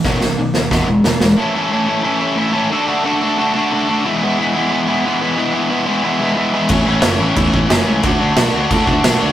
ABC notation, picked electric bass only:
X:1
M:4/4
L:1/8
Q:1/4=180
K:E
V:1 name="Picked electric bass" clef=bass
B,,, B,,, B,,, D,, E,,, E,,, E,,, E,,, | [K:A] z8 | z8 | z8 |
z8 | A,,, A,,, F,,, A,,, E,, A,,, F,,, C,, | D,, D,, B,,, D,, A,, D,, B,,, D,, |]